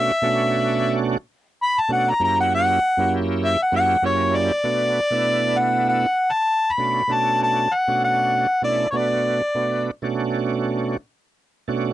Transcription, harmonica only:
0.00 0.95 E5 loud
1.63 1.81 B5 loud
1.80 1.91 A5 medium
1.93 2.11 F#5 medium
2.10 2.21 A#5 medium
2.24 2.38 A#5 loud
2.40 2.51 F#5 medium
2.55 3.12 F#5 loud
3.45 3.59 E5 loud
3.62 3.74 F#5 medium
3.76 4.04 F#5 loud
4.06 4.37 C#5 medium
4.35 5.60 D5 loud
5.58 5.88 F#5 medium
5.89 6.33 F#5 loud
6.31 6.73 A5 medium
6.72 7.14 B5 medium
7.12 7.41 A5 medium
7.43 7.75 A5 loud
7.74 8.03 F#5 medium
8.04 8.60 F#5 loud
8.64 8.86 D5 medium
8.90 8.98 C#5 medium
8.97 9.87 D5 medium

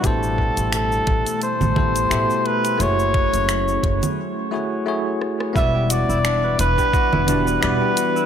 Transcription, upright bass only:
0.04 0.50 A1 loud
0.57 1.01 A1 medium
1.07 1.22 A1 medium
1.61 2.05 A1 medium
2.11 2.25 A1 medium
2.80 3.26 F#1 medium
3.33 3.77 F#1 medium
3.83 3.98 F#1 medium
5.56 6.02 E1 medium
6.09 6.53 E1 medium
6.59 6.74 E1 medium
7.13 7.57 E1 medium
7.63 7.77 E1 medium

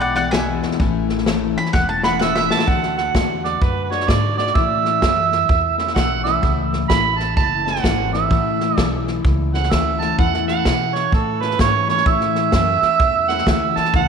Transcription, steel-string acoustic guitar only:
0.00 0.15 E3 medium
0.00 0.16 G#3 medium
0.00 0.15 B3 medium
0.00 0.13 E4 medium
0.15 0.32 E3 soft
0.15 0.33 G#3 medium
0.15 0.33 B3 soft
0.15 0.33 E4 medium
0.33 0.80 E2 medium
0.33 0.79 B2 medium
0.33 0.79 E3 medium
0.33 0.80 G#3 loud
0.33 0.80 B3 medium
0.33 0.80 E4 loud
0.79 1.25 A2 medium
0.79 1.26 E3 medium
0.79 1.26 A3 medium
0.79 1.27 C#4 medium
0.79 1.27 E4 loud
1.26 1.56 A2 medium
1.26 1.56 E3 medium
1.26 1.56 A3 medium
1.26 1.56 C#4 medium
1.26 1.54 E4 medium
1.55 1.73 A3 soft
1.55 1.74 C#4 medium
1.55 1.73 E4 medium
1.73 2.03 E3 medium
1.73 2.03 A3 medium
1.73 2.03 C#4 medium
1.73 2.01 E4 medium
2.03 2.20 A3 soft
2.03 2.20 C#4 soft
2.03 2.20 E4 medium
2.19 2.67 A2 medium
2.19 2.67 E3 loud
2.19 2.67 A3 medium
2.19 2.68 C#4 loud
2.19 2.68 E4 medium
2.67 3.13 D3 medium
2.67 3.15 A3 medium
2.67 3.15 D4 medium
2.67 3.15 F#4 medium
3.14 3.91 D3 medium
3.14 3.93 A3 medium
3.14 3.90 D4 medium
3.14 3.89 F#4 medium
3.90 4.07 A3 soft
3.90 4.08 D4 medium
3.90 4.08 F#4 medium
4.07 4.37 D3 medium
4.07 4.38 A3 medium
4.07 4.37 D4 medium
4.07 4.36 F#4 medium
4.37 4.55 A3 soft
4.37 4.56 D4 medium
4.37 4.55 F#4 soft
4.55 5.02 A2 medium
4.55 5.01 E3 medium
4.55 5.01 A3 medium
4.55 5.02 C#4 medium
4.55 5.04 E4 medium
5.01 5.94 E3 soft
5.01 5.79 A3 medium
5.01 5.79 C#4 medium
5.01 5.78 E4 medium
5.78 5.95 A3 soft
5.78 5.96 C#4 soft
5.78 5.96 E4 soft
5.95 6.25 E3 medium
5.95 6.26 A3 medium
5.95 6.25 C#4 medium
5.95 6.24 E4 medium
6.25 6.42 A3 soft
6.25 6.43 C#4 medium
6.25 6.43 E4 medium
6.42 6.89 A2 medium
6.42 6.89 E3 medium
6.42 6.89 A3 medium
6.42 6.90 C#4 medium
6.42 6.92 E4 medium
6.89 7.83 E3 medium
6.89 7.67 A3 medium
6.89 7.66 C#4 medium
6.89 7.65 E4 medium
7.65 7.83 A3 soft
7.65 7.84 C#4 medium
7.65 7.83 E4 medium
7.83 8.13 E3 medium
7.83 8.14 A3 medium
7.83 8.13 C#4 medium
7.83 8.11 E4 medium
8.12 8.30 A3 soft
8.12 8.31 C#4 soft
8.12 8.30 E4 soft
8.30 8.77 A2 medium
8.30 8.76 E3 medium
8.30 8.77 A3 medium
8.30 8.78 C#4 medium
8.30 8.80 E4 medium
8.77 9.70 E3 medium
8.77 9.54 A3 medium
8.77 9.54 C#4 medium
8.77 9.53 E4 medium
9.53 9.71 A3 soft
9.53 9.72 C#4 soft
9.53 9.71 E4 medium
9.71 10.00 E3 medium
9.71 10.01 A3 medium
9.71 10.01 C#4 medium
9.71 9.99 E4 medium
10.00 10.18 A3 soft
10.00 10.18 C#4 medium
10.00 10.18 E4 medium
10.17 10.65 A2 medium
10.17 10.64 E3 medium
10.17 10.64 A3 medium
10.17 10.65 C#4 medium
10.17 10.67 E4 medium
10.64 11.58 E3 medium
10.64 11.42 A3 medium
10.64 11.41 C#4 medium
10.64 11.40 E4 medium
11.40 11.58 A3 soft
11.40 11.59 C#4 medium
11.40 11.59 E4 medium
11.58 11.88 E3 medium
11.58 11.89 A3 medium
11.58 11.89 C#4 medium
11.58 11.87 E4 medium
11.88 12.05 A3 soft
11.88 12.05 C#4 soft
11.88 12.06 E4 medium
12.05 12.52 A2 medium
12.05 12.52 E3 medium
12.05 12.52 A3 medium
12.05 12.53 C#4 medium
12.05 12.55 E4 medium
12.52 13.46 E3 medium
12.52 13.29 A3 medium
12.52 13.29 C#4 medium
12.52 13.28 E4 medium
13.29 13.46 A3 soft
13.29 13.47 C#4 soft
13.29 13.47 E4 medium
13.46 13.76 E3 medium
13.46 13.76 A3 medium
13.46 13.76 C#4 medium
13.46 13.74 E4 medium
13.76 13.93 A3 soft
13.76 13.93 C#4 medium
13.76 13.93 E4 medium
13.93 14.08 A2 medium
13.93 14.08 E3 medium
13.93 14.08 A3 medium
13.93 14.08 C#4 loud
13.93 14.08 E4 medium

